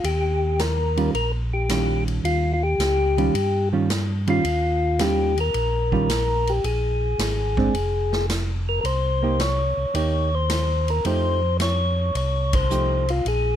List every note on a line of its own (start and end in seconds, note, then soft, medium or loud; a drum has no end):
0.04 1.10 D#2 medium
0.04 0.61 G4 medium
0.04 ride medium
0.59 1.11 A#4 medium
0.59 snare soft
0.59 hi-hat pedal soft
0.59 ride medium
0.97 1.12 D#3 soft
0.97 1.13 G3 medium
0.97 1.13 C#4 medium
0.97 1.13 F4 medium
0.97 ride soft
1.14 2.20 A#1 medium
1.14 1.32 A#4 medium
1.14 ride soft
1.53 2.04 G4 medium
1.69 2.55 D#3 soft
1.69 2.55 G3 soft
1.69 2.55 C#4 soft
1.69 2.55 F4 soft
1.69 snare medium
1.69 hi-hat pedal soft
1.69 ride medium
2.08 ride soft
2.24 2.75 D#2 medium
2.24 2.52 F4 medium
2.24 ride medium
2.53 2.63 F4 medium
2.63 3.69 G4 loud
2.78 3.30 C#2 medium
2.78 snare medium
2.78 hi-hat pedal medium
2.78 ride medium
3.18 3.33 D#3 medium
3.18 3.33 G3 medium
3.18 3.33 C#4 medium
3.18 3.33 F4 medium
3.18 ride soft
3.34 4.40 G2 medium
3.34 ride medium
3.73 3.88 D#3 medium
3.73 3.88 G3 medium
3.73 3.88 C#4 medium
3.73 3.88 F4 medium
3.90 snare medium
3.90 hi-hat pedal medium
3.90 ride medium
4.27 4.43 D#3 medium
4.27 4.43 G3 medium
4.27 4.43 C#4 medium
4.27 4.43 F4 medium
4.27 5.03 F4 loud
4.27 ride soft
4.44 5.50 D#2 medium
4.44 ride medium
4.99 5.34 D#3 medium
4.99 5.34 G3 medium
4.99 5.34 C#4 soft
4.99 5.34 F4 medium
4.99 5.39 G4 medium
4.99 snare medium
4.99 hi-hat pedal soft
4.99 ride medium
5.38 6.52 A#4 medium
5.38 ride soft
5.54 6.60 A#1 medium
5.54 ride soft
5.92 6.08 D#3 medium
5.92 6.08 G3 medium
5.92 6.08 C#4 medium
5.92 6.08 F4 medium
5.92 kick soft
6.10 snare medium
6.10 hi-hat pedal medium
6.10 ride medium
6.47 6.65 G4 medium
6.47 ride soft
6.64 7.15 A#1 medium
6.64 8.26 G#4 medium
6.64 ride soft
7.19 7.70 G#1 medium
7.19 snare medium
7.19 hi-hat pedal soft
7.19 ride medium
7.57 7.73 G#3 medium
7.57 7.73 C4 medium
7.57 7.73 D4 medium
7.57 kick medium
7.74 8.80 F1 medium
7.74 ride soft
8.13 snare medium
8.30 snare medium
8.30 hi-hat pedal medium
8.30 ride medium
8.69 8.80 A#4 medium
8.81 9.73 C2 medium
8.81 8.85 A#4 medium
8.81 ride medium
8.85 9.42 C5 loud
9.23 9.38 A#3 medium
9.23 9.38 D#4 soft
9.23 9.39 G4 medium
9.40 9.95 C#5 medium
9.40 snare medium
9.40 hi-hat pedal soft
9.40 ride medium
9.77 9.86 C2 soft
9.94 11.01 D#2 medium
9.94 10.29 A#3 soft
9.94 10.29 D#4 soft
9.94 10.29 G4 soft
9.94 10.35 C#5 medium
9.94 ride soft
10.35 10.91 C5 medium
10.50 snare medium
10.50 hi-hat pedal soft
10.50 ride medium
10.88 11.05 A#4 medium
10.88 ride soft
11.05 12.11 F2 medium
11.05 11.40 F3 soft
11.05 11.40 A3 medium
11.05 11.40 D#4 medium
11.05 11.40 G4 medium
11.05 11.57 C5 medium
11.05 ride soft
11.60 12.16 C#5 medium
11.60 snare medium
11.60 hi-hat pedal soft
11.60 ride medium
12.15 13.21 C2 medium
12.15 12.55 C#5 medium
12.15 ride medium
12.53 13.11 C5 medium
12.53 kick medium
12.53 ride medium
12.71 13.05 F3 soft
12.71 13.05 A3 soft
12.71 13.05 D#4 soft
12.71 13.05 G4 soft
12.71 hi-hat pedal medium
13.08 13.27 F4 medium
13.08 ride soft
13.25 13.56 A#1 medium
13.25 13.56 G#4 medium
13.25 ride soft